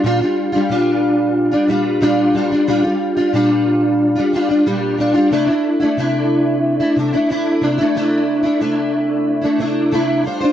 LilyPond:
\new Staff \with { instrumentName = "Steel-string acoustic guitar" } { \time 4/4 \key c \mixolydian \tempo 4 = 91 <bes, g d' f'>16 <g d' f'>8 <g d' f'>16 <bes, g d' f'>4~ <bes, g d' f'>16 <g d' f'>16 <bes, g d' f'>8 <bes, g d' f'>8 <bes, g d' f'>16 <g d' f'>16 | <bes, g d' f'>16 <g d' f'>8 <g d' f'>16 <bes, g d' f'>4~ <bes, g d' f'>16 <g d' f'>16 <bes, g d' f'>16 <g d' f'>16 <bes, g d' f'>8 <bes, g d' f'>16 <g d' f'>16 | <c a d' e'>16 <a d' e'>8 <a d' e'>16 <c a d' e'>4~ <c a d' e'>16 <a d' e'>16 <c a d' e'>16 <a d' e'>16 <c a d' e'>8 <c a d' e'>16 <a d' e'>16 | <c a d' e'>8. <a d' e'>16 <c a d' e'>4~ <c a d' e'>16 <a d' e'>16 <c a d' e'>8 <c a d' e'>8 <g d' f' c''>16 <d' f' c''>16 | }